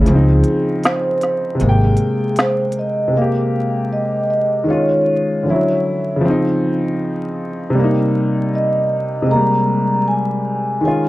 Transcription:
0.01 upright piano C#3
0.06 upright bass C#2, upright piano F3, vibraphone G#4, closed hi-hat
0.10 upright piano C4
0.15 upright piano D#4
0.44 closed hi-hat
0.84 vibraphone C5, finger snap, snare, closed hi-hat
1.21 snare, closed hi-hat
1.55 upright piano C3
1.60 upright bass G#1, upright piano G#3, vibraphone G#4, closed hi-hat
1.64 upright piano A#3
1.69 upright piano G5
1.97 closed hi-hat
2.36 finger snap, snare, closed hi-hat
2.41 vibraphone C5
2.72 closed hi-hat
2.79 vibraphone D#5
3.08 upright piano C3
3.12 upright piano G#3
3.17 upright piano A#3, vibraphone F5
3.22 upright piano G4
3.93 vibraphone D#5
4.30 vibraphone D#5
4.64 upright piano D#3 G#3, vibraphone D#5
4.68 upright piano C#4 F4, vibraphone C#5
5.43 upright piano D3 F3
5.48 upright piano F#3 C#4 E4
6.16 upright piano C#3
6.21 upright piano F3
6.25 upright piano C4
6.30 upright piano D#4
7.70 upright piano C3
7.75 upright piano G3
7.79 upright piano A#3
7.84 upright piano D#4
8.55 vibraphone D#5
9.22 upright piano C3
9.27 upright piano G#3
9.31 upright piano A#3, vibraphone A#5
9.36 upright piano G3
10.08 vibraphone G#5
10.81 upright piano D#3 G#3
10.85 upright piano C#4 F4, vibraphone G#5

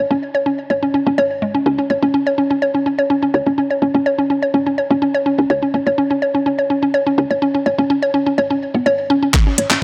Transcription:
0.11 fm bass G#1, synth arpeggio sound C#4
0.35 synth arpeggio sound C#5
0.46 synth arpeggio sound C#4
0.70 fm bass G#1, synth arpeggio sound C#5
0.83 synth arpeggio sound C#4
0.94 synth arpeggio sound C#4
1.07 fm bass G#1, synth arpeggio sound C#4
1.18 fm bass G#1, synth arpeggio sound C#5
1.42 synth arpeggio sound G#3
1.55 synth arpeggio sound C#4
1.66 fm bass C#2, synth arpeggio sound C#4
1.79 synth arpeggio sound C#4
1.90 fm bass G#1, synth arpeggio sound C#5
2.03 fm bass G#1, synth arpeggio sound C#4
2.14 synth arpeggio sound C#4
2.27 synth arpeggio sound C#5
2.38 synth arpeggio sound C#4
2.51 synth arpeggio sound C#4
2.62 synth arpeggio sound C#5
2.75 synth arpeggio sound C#4
2.86 synth arpeggio sound C#4
2.99 synth arpeggio sound C#5
3.10 synth arpeggio sound C#4
3.23 synth arpeggio sound C#4
3.34 fm bass C#2, synth arpeggio sound C#5
3.47 fm bass G#1, synth arpeggio sound C#4
3.58 synth arpeggio sound C#4
3.71 synth arpeggio sound C#5
3.82 fm bass G#1, synth arpeggio sound C#4
3.95 fm bass G#1, synth arpeggio sound C#4
4.06 synth arpeggio sound C#5
4.19 synth arpeggio sound C#4
4.30 synth arpeggio sound C#4
4.43 synth arpeggio sound C#5
4.54 fm bass G#1, synth arpeggio sound C#4
4.67 synth arpeggio sound C#4
4.78 synth arpeggio sound C#5
4.91 fm bass G#1, synth arpeggio sound C#4
5.02 synth arpeggio sound C#4
5.15 synth arpeggio sound C#5
5.26 synth arpeggio sound C#4
5.39 fm bass C#2, synth arpeggio sound C#4
5.50 fm bass C#2, synth arpeggio sound C#5
5.63 synth arpeggio sound C#4
5.74 fm bass G#1, synth arpeggio sound C#4
5.87 fm bass G#1, synth arpeggio sound C#5
5.98 synth arpeggio sound C#4
6.11 synth arpeggio sound C#4
6.22 synth arpeggio sound C#5
6.35 synth arpeggio sound C#4
6.46 synth arpeggio sound C#4
6.59 synth arpeggio sound C#5
6.70 synth arpeggio sound C#4
6.83 synth arpeggio sound C#4
6.94 synth arpeggio sound C#5
7.07 synth arpeggio sound C#4
7.18 fm bass C#2, synth arpeggio sound C#4
7.31 fm bass G#1, synth arpeggio sound C#5
7.42 synth arpeggio sound C#4
7.55 synth arpeggio sound C#4
7.66 fm bass G#1, synth arpeggio sound C#5
7.79 fm bass G#1, synth arpeggio sound C#4
7.90 synth arpeggio sound C#4
8.03 synth arpeggio sound C#5
8.14 synth arpeggio sound C#4
8.27 synth arpeggio sound C#4
8.38 fm bass G#1, synth arpeggio sound C#5
8.51 synth arpeggio sound C#4
8.75 fm bass G#1, synth arpeggio sound B3
8.86 fm bass G#1, synth arpeggio sound C#5
9.10 synth arpeggio sound C#4
9.23 synth arpeggio sound C#4
9.34 fm bass C#2, synth arpeggio sound C#4, kick, clap
9.47 synth arpeggio sound C#4
9.58 fm bass G#1, synth arpeggio sound C#5, closed hi-hat
9.70 fm bass G#1, synth arpeggio sound C#4, clap

